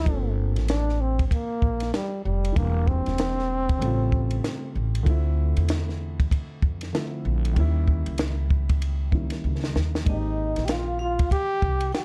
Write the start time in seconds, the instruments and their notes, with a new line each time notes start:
Already playing: trombone E4
0.03 upright bass G1, grand piano F3 A#3 C4, kick, ride
0.08 grand piano D4 A4
0.56 upright bass A1, snare, ride
0.68 trombone D4, snare, hi-hat pedal, ride
0.89 snare
1.01 trombone C4
1.19 kick, ride
1.28 trombone C4, kick, ride
1.32 trombone A#3
1.62 upright bass A#1, kick
1.80 snare, ride
1.94 trombone G3, snare, hi-hat pedal, ride
2.25 upright bass F1, trombone G3
2.45 ride
2.53 upright bass E1, grand piano E3 G3 A#3, kick, ride
2.57 trombone A#3, grand piano D4 G4
2.88 trombone C4, kick
3.06 upright bass E1, snare, ride
3.18 snare, hi-hat pedal, ride
3.39 snare
3.69 kick, ride
3.78 upright bass A1, grand piano C#3 G3 A3, ride
3.83 grand piano C4 F4
4.12 kick
4.31 ride
4.44 snare, hi-hat pedal, ride
4.75 upright bass A1
4.95 ride
5.03 upright bass D2, grand piano D3 A3 F4, kick, ride
5.08 grand piano C4 E4
5.57 upright bass E2, ride
5.69 snare, hi-hat pedal, ride
5.89 snare
6.20 kick, ride
6.31 kick, ride
6.62 upright bass F2, kick
6.81 snare, ride
6.93 grand piano D3 F3 A3 C4 E4, snare, hi-hat pedal, ride
7.25 upright bass A#1
7.45 ride
7.53 upright bass D#2, grand piano D#3 G3 A#3, kick, ride
7.58 grand piano C#4 E4
7.88 kick
8.06 upright bass C#2, ride
8.18 snare, hi-hat pedal, ride
8.50 kick
8.69 kick, ride
8.82 ride
9.11 grand piano D#3 G3 A#3 C#4 E4, kick
9.30 snare, ride
9.44 upright bass C#2
9.64 snare
9.75 upright bass D#2, snare
9.95 snare
10.03 upright bass G#1, grand piano D#3 G#3 A#3, vibraphone D#5, kick, ride
10.08 grand piano C4 G4, trombone D#4
10.56 upright bass A#1, snare, ride
10.63 trombone G4, vibraphone G5
10.68 trombone F4, vibraphone F5, snare, hi-hat pedal, ride
10.99 trombone F4, vibraphone F5
11.19 kick, ride
11.30 trombone G4, vibraphone G5, kick, ride
11.62 upright bass C2, kick
11.81 ride
11.93 trombone G4, vibraphone G5, snare, hi-hat pedal, ride